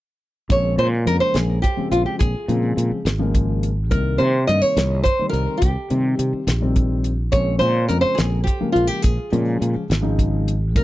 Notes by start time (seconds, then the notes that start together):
0.49 A#1 C#3 F3 G#3 C4 C#5, kick, closed hi-hat
0.78 A#2 C5, closed hi-hat
1.05 F2 C#3 F3 G#3 A#3 A#4, closed hi-hat
1.20 C5, muted fretless electric bass stroke
1.34 A#1 G#4, snare, closed hi-hat
1.62 G4, kick, closed hi-hat
1.77 C#3 F3 G#3 C4, muted fretless electric bass stroke
1.92 A#1 F4, closed hi-hat
2.06 G4
2.19 A#1 G#4, kick, closed hi-hat
2.48 A#2 C#3 F3 G#3 C4, closed hi-hat
2.77 A#2, closed hi-hat
2.91 muted fretless electric bass stroke
3.05 G#1, snare, closed hi-hat
3.19 C#3 F3 G#3 A#3
3.35 kick, closed hi-hat
3.63 closed hi-hat
3.90 C2 C3 D#3 G3 A#3 A#4, kick, closed hi-hat
4.18 C3 C5, closed hi-hat
4.47 G2 C3 D#3 G3 A#3 D#5, closed hi-hat
4.62 C#5, muted fretless electric bass stroke
4.77 C2, snare, closed hi-hat
5.03 C5, kick, closed hi-hat
5.19 C3 D#3 G3 C4, muted fretless electric bass stroke
5.29 C2 A#4
5.34 closed hi-hat
5.57 G4
5.62 C2, kick, closed hi-hat
5.89 C3 D#3 G3 C4, closed hi-hat
6.19 C3, closed hi-hat
6.33 muted fretless electric bass stroke
6.47 A#1, snare, closed hi-hat
6.60 C3 D#3 G3 C4
6.76 kick, closed hi-hat
7.04 closed hi-hat
7.32 A#1 C#3 F3 G#3 C4 C#5, kick, closed hi-hat
7.59 A#2 C5, closed hi-hat
7.88 F2 C#3 F3 G#3 C4 A#4, closed hi-hat
8.01 C5, muted fretless electric bass stroke
8.15 A#1 G#4, snare, closed hi-hat
8.44 G4, kick, closed hi-hat
8.60 C#3 F3 G#3 A#3, muted fretless electric bass stroke
8.72 A#1 F4, closed hi-hat
8.87 G4
9.02 A#1 G#4, kick, closed hi-hat
9.32 A#2 C#3 F3 G#3 C#4, closed hi-hat
9.61 A#2, closed hi-hat
9.76 muted fretless electric bass stroke
9.90 G#1, snare, closed hi-hat
10.01 C#3 F3 G#3 D#4
10.19 kick, closed hi-hat
10.48 closed hi-hat
10.75 C2 C3 D#3 G3 A#3 A#4, kick, closed hi-hat